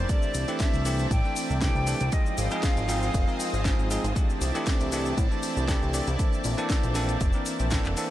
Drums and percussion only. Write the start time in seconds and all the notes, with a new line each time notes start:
0.09 kick, closed hi-hat, cabasa, shaker
0.22 cabasa, shaker
0.34 open hi-hat, cabasa, shaker
0.48 closed hi-hat, cabasa, shaker
0.59 kick, snare, closed hi-hat, cabasa, shaker
0.73 closed hi-hat, cabasa, shaker
0.85 open hi-hat, cabasa, shaker
0.98 cabasa, shaker
1.11 kick, closed hi-hat, cabasa, shaker
1.25 shaker
1.36 open hi-hat, cabasa, shaker
1.50 cabasa, shaker
1.61 kick, snare, closed hi-hat, cabasa, shaker
1.75 shaker
1.87 open hi-hat, cabasa, shaker
2.00 closed hi-hat, cabasa, shaker
2.12 kick, closed hi-hat, cabasa, shaker
2.26 cabasa, shaker
2.38 open hi-hat, cabasa, shaker
2.50 closed hi-hat, cabasa, shaker
2.63 kick, snare, closed hi-hat, cabasa, shaker
2.77 closed hi-hat, cabasa, shaker
2.89 snare, open hi-hat, cabasa, shaker
3.02 cabasa, shaker
3.14 kick, closed hi-hat, cabasa, shaker
3.28 shaker
3.40 open hi-hat, cabasa, shaker
3.54 cabasa, shaker
3.65 kick, snare, closed hi-hat, cabasa, shaker
3.79 shaker
3.91 open hi-hat, cabasa, shaker
4.04 closed hi-hat, cabasa, shaker
4.16 kick, closed hi-hat, cabasa, shaker
4.30 cabasa, shaker
4.41 open hi-hat, cabasa, shaker
4.55 closed hi-hat, cabasa, shaker
4.66 kick, snare, closed hi-hat, cabasa, shaker
4.80 closed hi-hat, cabasa, shaker
4.92 open hi-hat, cabasa, shaker
5.05 cabasa, shaker
5.17 kick, closed hi-hat, cabasa, shaker
5.31 shaker
5.42 open hi-hat, cabasa, shaker
5.57 cabasa, shaker
5.68 kick, snare, closed hi-hat, cabasa, shaker
5.82 shaker
5.94 open hi-hat, cabasa, shaker
6.07 closed hi-hat, cabasa, shaker
6.19 kick, closed hi-hat, cabasa, shaker
6.33 cabasa, shaker
6.44 open hi-hat, cabasa, shaker
6.58 closed hi-hat, cabasa, shaker
6.70 kick, snare, closed hi-hat, cabasa, shaker
6.83 closed hi-hat, cabasa, shaker
6.95 snare, open hi-hat, cabasa, shaker
7.09 closed hi-hat, cabasa, shaker
7.21 kick, closed hi-hat, cabasa, shaker
7.33 cabasa, shaker
7.45 open hi-hat, cabasa, shaker
7.59 closed hi-hat, cabasa, shaker
7.70 kick, snare, closed hi-hat, cabasa, shaker
7.85 clap, cabasa, shaker
7.97 open hi-hat, cabasa, shaker